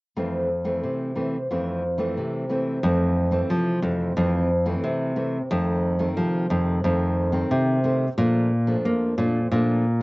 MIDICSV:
0, 0, Header, 1, 3, 480
1, 0, Start_track
1, 0, Key_signature, -1, "major"
1, 0, Tempo, 668896
1, 116, Time_signature, 4, 2, 24, 8
1, 7194, End_track
2, 0, Start_track
2, 0, Title_t, "Nylon-string guitar"
2, 0, Program_c, 0, 24
2, 118, Note_on_c, 0, 41, 57
2, 119, Note_on_c, 0, 52, 42
2, 121, Note_on_c, 0, 57, 48
2, 125, Note_on_c, 0, 60, 54
2, 342, Note_off_c, 0, 52, 0
2, 344, Note_off_c, 0, 57, 0
2, 345, Note_off_c, 0, 60, 0
2, 463, Note_on_c, 0, 52, 47
2, 466, Note_on_c, 0, 57, 55
2, 469, Note_on_c, 0, 60, 59
2, 574, Note_off_c, 0, 41, 0
2, 598, Note_on_c, 0, 48, 60
2, 791, Note_off_c, 0, 52, 0
2, 793, Note_off_c, 0, 57, 0
2, 794, Note_off_c, 0, 60, 0
2, 829, Note_on_c, 0, 52, 49
2, 834, Note_on_c, 0, 57, 45
2, 837, Note_on_c, 0, 60, 48
2, 974, Note_off_c, 0, 52, 0
2, 976, Note_off_c, 0, 57, 0
2, 978, Note_off_c, 0, 60, 0
2, 1054, Note_off_c, 0, 48, 0
2, 1081, Note_on_c, 0, 41, 63
2, 1083, Note_on_c, 0, 52, 48
2, 1085, Note_on_c, 0, 57, 49
2, 1087, Note_on_c, 0, 60, 53
2, 1305, Note_off_c, 0, 52, 0
2, 1305, Note_off_c, 0, 57, 0
2, 1307, Note_off_c, 0, 60, 0
2, 1420, Note_on_c, 0, 52, 55
2, 1424, Note_on_c, 0, 57, 58
2, 1429, Note_on_c, 0, 60, 60
2, 1536, Note_off_c, 0, 41, 0
2, 1559, Note_on_c, 0, 48, 61
2, 1750, Note_off_c, 0, 52, 0
2, 1752, Note_off_c, 0, 57, 0
2, 1754, Note_off_c, 0, 60, 0
2, 1789, Note_on_c, 0, 52, 46
2, 1793, Note_on_c, 0, 57, 49
2, 1798, Note_on_c, 0, 60, 57
2, 1994, Note_off_c, 0, 52, 0
2, 1997, Note_off_c, 0, 57, 0
2, 1998, Note_off_c, 0, 60, 0
2, 2014, Note_off_c, 0, 48, 0
2, 2032, Note_on_c, 0, 41, 51
2, 2036, Note_on_c, 0, 52, 55
2, 2039, Note_on_c, 0, 57, 56
2, 2042, Note_on_c, 0, 60, 56
2, 2357, Note_off_c, 0, 52, 0
2, 2359, Note_off_c, 0, 57, 0
2, 2361, Note_off_c, 0, 60, 0
2, 2377, Note_on_c, 0, 52, 56
2, 2383, Note_on_c, 0, 57, 63
2, 2384, Note_on_c, 0, 60, 65
2, 2491, Note_off_c, 0, 41, 0
2, 2509, Note_on_c, 0, 48, 52
2, 2709, Note_off_c, 0, 52, 0
2, 2710, Note_off_c, 0, 57, 0
2, 2711, Note_off_c, 0, 60, 0
2, 2747, Note_on_c, 0, 52, 50
2, 2748, Note_on_c, 0, 57, 48
2, 2751, Note_on_c, 0, 60, 52
2, 2953, Note_off_c, 0, 52, 0
2, 2953, Note_off_c, 0, 57, 0
2, 2955, Note_off_c, 0, 60, 0
2, 2968, Note_off_c, 0, 48, 0
2, 2989, Note_on_c, 0, 41, 55
2, 2990, Note_on_c, 0, 52, 53
2, 2995, Note_on_c, 0, 57, 54
2, 2996, Note_on_c, 0, 60, 64
2, 3218, Note_off_c, 0, 52, 0
2, 3219, Note_off_c, 0, 57, 0
2, 3221, Note_off_c, 0, 60, 0
2, 3342, Note_on_c, 0, 52, 56
2, 3345, Note_on_c, 0, 57, 57
2, 3346, Note_on_c, 0, 60, 59
2, 3449, Note_off_c, 0, 41, 0
2, 3468, Note_on_c, 0, 48, 49
2, 3670, Note_off_c, 0, 52, 0
2, 3671, Note_off_c, 0, 57, 0
2, 3672, Note_off_c, 0, 60, 0
2, 3703, Note_on_c, 0, 52, 52
2, 3705, Note_on_c, 0, 57, 48
2, 3708, Note_on_c, 0, 60, 49
2, 3850, Note_off_c, 0, 52, 0
2, 3850, Note_off_c, 0, 57, 0
2, 3853, Note_off_c, 0, 60, 0
2, 3927, Note_off_c, 0, 48, 0
2, 3951, Note_on_c, 0, 41, 51
2, 3953, Note_on_c, 0, 51, 48
2, 3956, Note_on_c, 0, 60, 54
2, 3958, Note_on_c, 0, 57, 55
2, 4275, Note_off_c, 0, 51, 0
2, 4276, Note_off_c, 0, 57, 0
2, 4277, Note_off_c, 0, 60, 0
2, 4300, Note_on_c, 0, 51, 61
2, 4304, Note_on_c, 0, 57, 52
2, 4307, Note_on_c, 0, 60, 62
2, 4409, Note_off_c, 0, 41, 0
2, 4437, Note_on_c, 0, 48, 52
2, 4629, Note_off_c, 0, 51, 0
2, 4630, Note_off_c, 0, 57, 0
2, 4632, Note_off_c, 0, 60, 0
2, 4667, Note_on_c, 0, 51, 49
2, 4671, Note_on_c, 0, 57, 53
2, 4672, Note_on_c, 0, 60, 53
2, 4872, Note_off_c, 0, 51, 0
2, 4873, Note_off_c, 0, 57, 0
2, 4875, Note_off_c, 0, 60, 0
2, 4892, Note_off_c, 0, 48, 0
2, 4911, Note_on_c, 0, 41, 51
2, 4915, Note_on_c, 0, 51, 58
2, 4916, Note_on_c, 0, 57, 48
2, 4918, Note_on_c, 0, 60, 57
2, 5235, Note_off_c, 0, 51, 0
2, 5236, Note_off_c, 0, 57, 0
2, 5237, Note_off_c, 0, 60, 0
2, 5256, Note_on_c, 0, 51, 64
2, 5261, Note_on_c, 0, 57, 59
2, 5261, Note_on_c, 0, 60, 67
2, 5369, Note_off_c, 0, 41, 0
2, 5391, Note_on_c, 0, 48, 53
2, 5587, Note_off_c, 0, 51, 0
2, 5588, Note_off_c, 0, 57, 0
2, 5589, Note_off_c, 0, 60, 0
2, 5626, Note_on_c, 0, 51, 55
2, 5629, Note_on_c, 0, 57, 48
2, 5635, Note_on_c, 0, 60, 51
2, 5771, Note_off_c, 0, 51, 0
2, 5773, Note_off_c, 0, 57, 0
2, 5774, Note_off_c, 0, 60, 0
2, 5848, Note_off_c, 0, 48, 0
2, 5868, Note_on_c, 0, 46, 51
2, 5870, Note_on_c, 0, 53, 51
2, 5872, Note_on_c, 0, 57, 53
2, 5878, Note_on_c, 0, 62, 61
2, 6096, Note_off_c, 0, 53, 0
2, 6098, Note_off_c, 0, 57, 0
2, 6099, Note_off_c, 0, 62, 0
2, 6222, Note_on_c, 0, 53, 60
2, 6227, Note_on_c, 0, 57, 58
2, 6229, Note_on_c, 0, 62, 65
2, 6327, Note_off_c, 0, 46, 0
2, 6356, Note_on_c, 0, 41, 50
2, 6550, Note_off_c, 0, 53, 0
2, 6551, Note_off_c, 0, 57, 0
2, 6552, Note_off_c, 0, 62, 0
2, 6588, Note_on_c, 0, 53, 45
2, 6593, Note_on_c, 0, 57, 47
2, 6596, Note_on_c, 0, 62, 57
2, 6732, Note_off_c, 0, 53, 0
2, 6735, Note_off_c, 0, 57, 0
2, 6735, Note_off_c, 0, 62, 0
2, 6810, Note_off_c, 0, 41, 0
2, 6834, Note_on_c, 0, 46, 54
2, 6834, Note_on_c, 0, 53, 55
2, 6836, Note_on_c, 0, 57, 51
2, 6841, Note_on_c, 0, 62, 56
2, 7058, Note_off_c, 0, 53, 0
2, 7059, Note_off_c, 0, 57, 0
2, 7062, Note_off_c, 0, 62, 0
2, 7194, Note_off_c, 0, 46, 0
2, 7194, End_track
3, 0, Start_track
3, 0, Title_t, "Nylon-string guitar"
3, 0, Program_c, 1, 24
3, 2512, Note_on_c, 1, 53, 75
3, 2718, Note_off_c, 1, 53, 0
3, 2745, Note_on_c, 1, 41, 75
3, 2953, Note_off_c, 1, 41, 0
3, 4426, Note_on_c, 1, 53, 74
3, 4634, Note_off_c, 1, 53, 0
3, 4665, Note_on_c, 1, 41, 80
3, 4873, Note_off_c, 1, 41, 0
3, 6351, Note_on_c, 1, 58, 74
3, 6556, Note_off_c, 1, 58, 0
3, 6585, Note_on_c, 1, 46, 76
3, 6792, Note_off_c, 1, 46, 0
3, 7194, End_track
0, 0, End_of_file